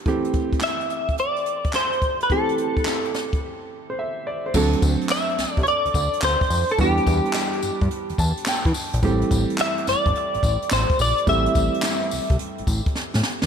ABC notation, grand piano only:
X:1
M:4/4
L:1/16
Q:"Swing 16ths" 1/4=107
K:Ador
V:1 name="Grand piano"
z16 | z8 z3 c e2 d c- | c z12 z3 | z8 z2 a2 g4 |
z16 | z16 |]
V:2 name="Grand piano"
[E,A,CG]16 | [E,A,CG]16 | [F,A,CDA]16 | [E,G,B,DG]16 |
[E,G,A,CG]16 | [E,G,A,CG]16 |]